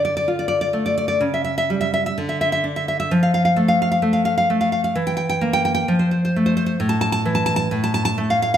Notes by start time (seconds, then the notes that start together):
Already playing: D3 D4
0.05 D5
0.17 D5
0.28 F4
0.39 D5
0.48 D5
0.61 D5
0.73 A3
0.86 D5
0.98 D5
1.08 D5
1.21 C#3
1.34 E5
1.45 E5
1.58 E5
1.70 G3
1.81 E5
1.94 E5
2.06 E5
2.18 D3
2.29 E5
2.41 E5
2.52 E5
2.64 D4
2.76 E5
2.88 E5
3.00 E5
3.11 F3
3.23 F5
3.34 F5
3.45 F5
3.56 A3
3.68 F5
3.82 F5
3.92 F5
4.02 A3
4.13 F5
4.25 F5
4.38 F5
4.50 A3
4.61 F5
4.72 F5
4.84 F5
4.95 E3
5.07 G5
5.17 G5
5.29 G5
5.41 A#3
5.53 G5
5.65 G5
5.75 G5
5.88 F3
5.99 C5
6.11 C5
6.25 C5
6.36 A3
6.46 C5
6.57 C5
6.66 C5
6.80 A2
6.89 A5
7.01 A5
7.12 A5
7.25 E3
7.35 A5
7.46 A5
7.56 A5
7.71 A2
7.84 A5
7.94 A5
8.05 A5
8.18 A3
8.30 F5
8.42 F5
8.54 F5